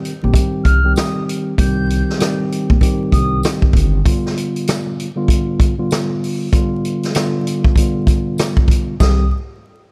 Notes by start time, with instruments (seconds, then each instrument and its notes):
Already playing: tine electric piano D#3 G3 C4 G4
0.05 closed hi-hat
0.23 upright bass A#1, tine electric piano D#3 G3 C4 G4
0.34 kick, closed hi-hat
0.64 upright bass C2, flute F6, kick, closed hi-hat
0.84 tine electric piano D#3 G3 C4 G4
0.96 flute D#6, cross-stick, snare, closed hi-hat, tambourine
1.29 closed hi-hat
1.58 upright bass C2, tine electric piano D#3 G3 C4 G4, flute G6, kick, closed hi-hat
1.90 closed hi-hat
2.10 snare
2.18 tine electric piano D#3 G3 C4 G4, cross-stick, snare, closed hi-hat, tambourine
2.52 closed hi-hat
2.70 upright bass A#1, kick
2.81 tine electric piano D#3 G3 C4 G4, kick, closed hi-hat
3.12 upright bass C2, flute D#6, kick, closed hi-hat
3.43 cross-stick, snare, closed hi-hat, tambourine
3.62 kick
3.73 upright bass G1, kick, closed hi-hat
4.05 tine electric piano D3 G3 B3 F4, kick, closed hi-hat
4.26 snare
4.37 closed hi-hat
4.56 closed hi-hat
4.67 cross-stick, snare, closed hi-hat, tambourine
5.00 closed hi-hat
5.16 tine electric piano D3 G3 B3 F4
5.28 kick, closed hi-hat
5.60 kick, closed hi-hat
5.78 tine electric piano D3 G3 B3 F4
5.91 cross-stick, snare, closed hi-hat, tambourine
6.24 open hi-hat
6.52 tine electric piano D3 G3 B3 F4, kick, closed hi-hat
6.85 closed hi-hat
7.03 snare, closed hi-hat
7.14 tine electric piano D3 G3 B3 F4, cross-stick, snare, closed hi-hat, tambourine
7.47 closed hi-hat
7.64 kick
7.76 tine electric piano D3 G3 B3 F4, kick, closed hi-hat
8.07 kick, closed hi-hat
8.38 cross-stick, snare, closed hi-hat, tambourine
8.57 kick
8.68 kick, closed hi-hat
9.00 upright bass C2, tine electric piano D#3 G3 C4 G4, flute D#6, kick, snare, tambourine